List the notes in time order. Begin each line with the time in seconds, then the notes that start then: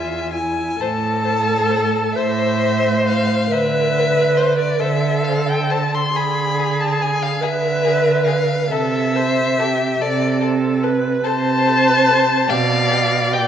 Already playing: E2 F4 E5 G#5
0.32 E4 G#5
0.79 A2 A4 C5 A5
1.25 C5
1.69 C5
2.15 A2 C5 E5
2.64 C5
3.08 C5 F5
3.50 D3 B4 C5 E5
3.96 C5
4.37 C5
4.59 D5
4.80 D3 A4 C5 E5
5.25 C5 F5
5.49 G5
5.70 C5 A5
5.95 C6
6.14 D3 G#4 B5
6.59 G#4
6.80 A5
7.01 G#4 G#5
7.22 F5
7.40 D3 G#4 B4 E5
7.85 G#4
8.26 G#4 F5
8.70 C3 A4 E5
9.16 A4 C5
9.59 G4 A4
10.00 C3 A4 D5
10.41 A4
10.83 A4 B4
11.24 C3 A4 C5 A5
11.67 A4
12.08 A4
12.48 B2 G4 D5 F5
12.91 G4
13.33 G4 G5